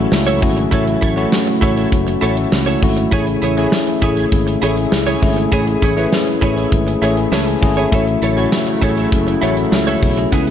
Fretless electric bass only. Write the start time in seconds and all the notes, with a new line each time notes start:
0.12 C#2
0.42 G#1
0.72 A1
1.03 A1
1.62 A1
1.92 F#1
2.22 A1
2.53 C#2
2.83 G#1
3.12 A1
3.43 A1
4.02 A1
4.32 G#1
4.63 A1
4.93 C#2
5.23 G#1
5.52 A1
5.83 A1
6.42 A1
6.72 G#1
7.02 A1
7.32 C#2
7.63 G#1
7.93 A1
8.22 A1
8.82 A1
9.12 F#1
9.43 A1
9.72 C#2
10.03 B1
10.33 C#2